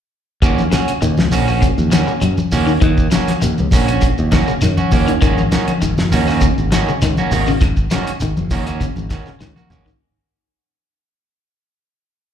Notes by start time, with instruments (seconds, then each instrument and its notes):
0.42 fingered electric bass D#2, clean electric guitar A#3 C#4 F#4, muted clean electric guitar stroke, kick, closed hi-hat, claves, shekere
0.58 high conga, shekere
0.72 clean electric guitar C#3 C#4 F#4, muted clean electric guitar stroke, snare, closed hi-hat, high conga, low conga, shekere
0.88 closed hi-hat, claves, shekere
1.02 fingered electric bass D#2, clean electric guitar D#3, closed hi-hat, shekere
1.17 fingered electric bass C#2, snare, high conga, shekere
1.32 fingered electric bass A#1, clean electric guitar A#3 C#4 F#4, open hi-hat, low conga, shekere
1.48 clean electric guitar C#4 F#4, claves, shekere
1.62 clean electric guitar C#3, kick, closed hi-hat, shekere
1.78 fingered electric bass D#2, high conga, shekere
1.92 clean electric guitar D#3 A#3 C#4 F#4, snare, closed hi-hat, high conga, claves, shekere
2.07 muted clean electric guitar stroke, shekere
2.21 fingered electric bass F#2, clean electric guitar F#3, closed hi-hat, claves, shekere
2.38 high conga, shekere
2.52 fingered electric bass D#2, clean electric guitar A#3 C#4 F#4, open hi-hat, low conga, shekere
2.67 clean electric guitar D#3, shekere
2.81 fingered electric bass D#2, clean electric guitar D#3, kick, closed hi-hat, claves, shekere
2.98 kick, shekere
3.11 clean electric guitar C#3 A#3 C#4 F#4, snare, closed hi-hat, high conga, shekere
3.27 snare, closed hi-hat, high conga, claves, shekere
3.42 fingered electric bass D#2, clean electric guitar D#3, closed hi-hat, shekere
3.58 fingered electric bass C#2, high conga, shekere
3.71 fingered electric bass A#1, clean electric guitar A#3 C#4 F#4, kick, snare, open hi-hat, low conga, shekere
3.88 clean electric guitar C#4 F#4, closed hi-hat, claves, shekere
4.01 muted clean electric guitar stroke, kick, closed hi-hat, shekere
4.18 fingered electric bass D#2, shekere
4.32 clean electric guitar D#3 A#3 C#4 F#4, kick, snare, closed hi-hat, high conga, low conga, claves, shekere
4.47 clean electric guitar C#3, shekere
4.61 fingered electric bass F#2, clean electric guitar D#3, snare, closed hi-hat, claves, shekere
4.77 clean electric guitar C#4 F#4, high conga, shekere
4.91 fingered electric bass D#2, clean electric guitar A#3 C#4 F#4, kick, open hi-hat, low conga, shekere
5.07 clean electric guitar D#3, closed hi-hat, shekere
5.21 fingered electric bass G#1, clean electric guitar D#3 A#3 C#4 F#4, kick, closed hi-hat, claves, shekere
5.38 high conga, shekere
5.52 clean electric guitar D#3 A#3 C#4 F#4, snare, closed hi-hat, high conga, low conga, shekere
5.68 closed hi-hat, high conga, claves, shekere
5.82 fingered electric bass G#1, clean electric guitar D#3, closed hi-hat, shekere
5.98 fingered electric bass F#1, snare, high conga, shekere
6.12 fingered electric bass D#2, clean electric guitar A#3 C#4 F#4, snare, open hi-hat, low conga, shekere
6.27 clean electric guitar A#3 C#4 F#4, snare, claves, shekere
6.41 clean electric guitar C#3, kick, closed hi-hat, shekere
6.58 fingered electric bass G#1, shekere
6.72 clean electric guitar D#3 A#3 C#4 F#4, snare, closed hi-hat, high conga, claves, shekere
6.88 clean electric guitar C#3, shekere
7.02 fingered electric bass C#2, clean electric guitar D#3, snare, closed hi-hat, claves, shekere
7.17 clean electric guitar A#3 C#4 F#4, high conga, shekere
7.31 fingered electric bass G#1, clean electric guitar D#3 A#3 F#4, muted clean electric guitar stroke, open hi-hat, low conga, shekere
7.47 clean electric guitar C#3, shekere
7.61 fingered electric bass G#1, muted clean electric guitar stroke, kick, snare, closed hi-hat, claves, shekere
7.77 kick, shekere
7.91 clean electric guitar C#3 D#3 A#3 C#4 F#4, snare, closed hi-hat, high conga, shekere
8.07 closed hi-hat, claves, shekere
8.20 fingered electric bass G#1, clean electric guitar D#3, closed hi-hat, shekere
8.37 fingered electric bass F#1, high conga, shekere
8.51 fingered electric bass D#2, clean electric guitar D#3 A#3 C#4 F#4, kick, open hi-hat, low conga, shekere
8.67 clean electric guitar A#3 C#4 F#4, closed hi-hat, claves, shekere
8.81 clean electric guitar C#3, kick, closed hi-hat, shekere
8.96 fingered electric bass G#1, high conga, shekere
9.10 clean electric guitar D#3 A#3 C#4 F#4, kick, snare, closed hi-hat, high conga, low conga, claves, shekere
9.26 clean electric guitar C#3, snare, shekere
9.40 fingered electric bass C#2, clean electric guitar D#3, snare, claves, shekere
9.56 clean electric guitar A#3 F#4, muted clean electric guitar stroke, high conga, shekere
9.70 fingered electric bass G#1, clean electric guitar A#3 C#4 F#4, mid tom, low conga, shekere
9.86 clean electric guitar D#3, floor tom, shekere